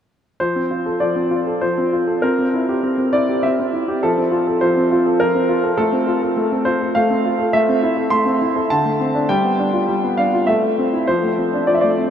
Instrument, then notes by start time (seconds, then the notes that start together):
grand piano
0.40 F3 C5
0.56 C4
0.71 F4
0.86 A4
1.00 F3 D5
1.16 C4
1.31 F4
1.47 A4
1.61 F3 C5
1.78 C4
1.93 F4
2.07 A4
2.22 C4 A#4
2.39 C4
2.54 E4
2.69 G4
2.83 C4
2.98 C4
3.13 E4 D5
3.29 G4
3.43 C4 E5
3.60 C4
3.73 E4
3.88 G4
4.03 F3 A4
4.18 C4
4.32 F4
4.47 A4
4.61 F3 C5
4.77 C4
4.91 F4
5.06 A4
5.20 F3 A#4
5.35 C4
5.49 F4
5.64 A4
5.77 A3 A4
5.92 C4
6.07 F4
6.22 A4
6.37 A3
6.52 C4
6.65 F4 C5
6.81 A4
6.95 A3 F5
7.10 C4
7.25 F4
7.39 A4
7.53 A3 E5
7.69 C4
7.83 E4
7.97 A4
8.10 A3 C6
8.26 C4
8.41 E4
8.56 A4
8.70 D3 A5
8.85 A3
9.00 C4
9.15 D4
9.29 G3 G5
9.44 B3
9.59 D4
9.73 F4
9.89 G3
10.04 B3
10.18 D4 F5
10.33 F4
10.47 A3 E5
10.63 A3
10.79 C4
10.93 E4
11.07 F3 C5
11.23 A3
11.38 C4
11.54 D4
11.67 F3 D5
11.75 E5
11.81 A3 D5
11.98 C4